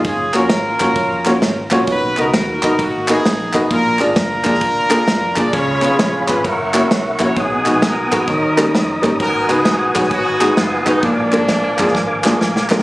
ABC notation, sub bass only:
X:1
M:4/4
L:1/8
Q:"Swing" 1/4=131
K:Bbphr
V:1 name="Sub bass" clef=bass
G,,, F,,, A,,, G,,, F,,,2 A,,, B,,, | =B,,, D,, ^D,, B,,, A,,,2 ^A,,, =A,,, | B,,, A,,, G,,, F,,, =D,,,2 F,,, =C,, | D,, C,, B,,, A,,, G,,,2 C,, B,,, |
=B,,, _B,,, =B,,, ^G,,, E,,,2 F,,, =G,,, | A,,, D,, C,, B,,, A,,,2 G,,, =A,,, | B,,, A,,, B,,, G,,, A,,,2 B,,,2 |]